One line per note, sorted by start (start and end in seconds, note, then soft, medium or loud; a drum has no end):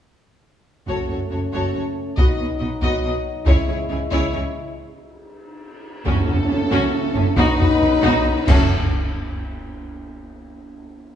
0.88 0.96 F#1 soft
0.88 0.96 F#2 soft
0.88 2.14 A3 soft
0.88 2.14 C#4 soft
0.88 1.08 F#4 soft
0.88 1.08 A4 soft
0.88 1.08 C#5 soft
0.88 taiko soft
1.09 1.18 F#1 soft
1.09 1.18 F#2 soft
1.09 1.17 F#4 soft
1.09 1.18 A4 soft
1.09 1.19 C#5 soft
1.31 1.39 F#1 soft
1.31 1.39 F#2 soft
1.31 1.39 F#4 soft
1.31 1.40 A4 soft
1.31 1.40 C#5 soft
1.52 1.62 F#1 medium
1.52 1.60 F#2 soft
1.52 1.73 F#4 soft
1.52 1.73 A4 medium
1.52 1.73 C#5 medium
1.52 taiko soft
1.74 1.83 F#1 soft
1.74 1.82 F#2 soft
1.74 1.82 F#4 soft
1.74 1.84 A4 soft
1.74 1.82 C#5 soft
2.17 2.26 B1 medium
2.17 2.25 B2 medium
2.17 3.45 F#3 soft
2.17 3.45 D#4 medium
2.17 2.37 F#4 medium
2.17 2.38 B4 medium
2.17 2.37 D#5 medium
2.17 taiko medium
2.38 2.47 B1 soft
2.38 2.47 B2 soft
2.38 2.47 F#4 soft
2.38 2.48 B4 soft
2.38 2.46 D#5 soft
2.59 2.69 B1 soft
2.59 2.69 B2 soft
2.59 2.68 F#4 soft
2.59 2.70 B4 soft
2.59 2.67 D#5 soft
2.82 2.90 B1 medium
2.82 2.90 B2 medium
2.82 3.02 F#4 medium
2.82 3.03 B4 medium
2.82 3.02 D#5 medium
2.82 taiko medium
3.04 3.12 B1 soft
3.04 3.12 B2 soft
3.04 3.12 F#4 medium
3.04 3.13 B4 soft
3.04 3.13 D#5 soft
3.46 3.55 C#2 medium
3.46 3.55 C#3 medium
3.46 4.74 G#3 medium
3.46 4.74 E4 medium
3.46 3.67 E4 medium
3.46 3.68 G#4 medium
3.46 3.67 C#5 medium
3.46 taiko medium
3.68 3.77 C#2 soft
3.68 3.76 C#3 soft
3.68 3.77 E4 soft
3.68 3.78 G#4 soft
3.68 3.77 C#5 soft
3.90 3.98 C#2 soft
3.90 3.98 C#3 medium
3.90 4.00 E4 medium
3.90 4.00 G#4 medium
3.90 3.98 C#5 medium
4.11 4.20 C#2 medium
4.11 4.19 C#3 medium
4.11 4.32 E4 medium
4.11 4.32 G#4 medium
4.11 4.31 C#5 medium
4.11 taiko medium
4.32 4.42 C#2 soft
4.32 4.41 C#3 medium
4.32 4.41 E4 medium
4.32 4.41 G#4 medium
4.32 4.40 C#5 soft
6.05 6.14 F#1 medium
6.05 6.13 F#2 medium
6.05 7.33 A3 medium
6.05 6.26 C#4 medium
6.05 7.33 C#4 medium
6.05 6.26 F#4 medium
6.05 7.33 A4 medium
6.05 taiko medium
6.05 tam-tam medium
6.05 cymbal swell medium
6.27 6.36 F#1 medium
6.27 6.35 F#2 medium
6.27 6.36 C#4 soft
6.27 6.36 F#4 soft
6.27 taiko low soft
6.48 6.58 F#1 medium
6.48 6.57 F#2 medium
6.48 6.56 C#4 medium
6.48 6.58 C#4 medium
6.71 6.80 F#1 medium
6.71 6.79 F#2 medium
6.71 6.92 C#4 medium
6.71 6.92 F#4 medium
6.71 taiko medium
7.15 7.23 F#1 medium
7.15 7.23 F#2 medium
7.15 7.24 C#4 medium
7.36 7.45 B1 loud
7.36 7.45 B2 loud
7.36 8.48 F#3 loud
7.36 7.57 D#4 loud
7.36 8.46 D#4 loud
7.36 7.58 F#4 loud
7.36 8.48 B4 loud
7.36 taiko loud
7.58 7.67 B1 medium
7.58 7.68 B2 medium
7.58 7.66 D#4 medium
7.58 7.68 F#4 medium
7.58 taiko low medium
7.81 7.90 B1 medium
7.81 7.90 B2 medium
7.81 7.89 D#4 medium
8.03 8.12 B1 loud
8.03 8.12 B2 loud
8.03 8.24 D#4 loud
8.03 8.24 F#4 loud
8.03 taiko medium
8.48 8.74 F#1 loud
8.48 8.74 F#2 medium
8.48 8.67 A3 medium
8.48 8.73 C#4 medium
8.48 8.68 C#4 medium
8.48 8.73 F#4 medium
8.48 8.74 A4 medium
8.48 concert bass drum medium
8.48 taiko loud
8.48 crash medium